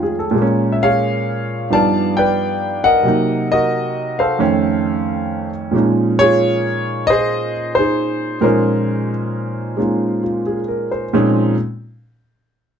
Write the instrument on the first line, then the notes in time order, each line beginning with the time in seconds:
grand piano
Already playing: F2 D#3 G#3 A3 C#4 F4
0.03 G#4
0.19 A4
0.31 A#2 G#3
0.38 A#3 C#4
0.72 E5
0.83 G#4 C#5 F5
1.70 G2 F3 B3 D#4 F5 A5
1.74 D5
2.17 B4 D5 G5
2.84 A#4 D#5 F#5
3.03 C3 F#3 A#3
3.08 D#4
3.52 F#4 A#4 D#5
4.19 A4 C5 F5
4.39 F2 D#3 A3 C#4
5.71 A#2 F3 G#3 A#3
5.76 C#4 D#4
6.19 F4 G#4 C#5
7.07 G#4 C5 D#5
7.75 G#4 C5
7.79 D#4
8.41 A#2 F3 G#3 A#4 C5
8.45 C#4 D#4
9.77 G#3 A#3 C#4 D#4 F4
10.24 F4
10.46 G#4
10.68 A#4
10.91 C5
11.13 A#2 F3 G#3 C4 C#4 D#4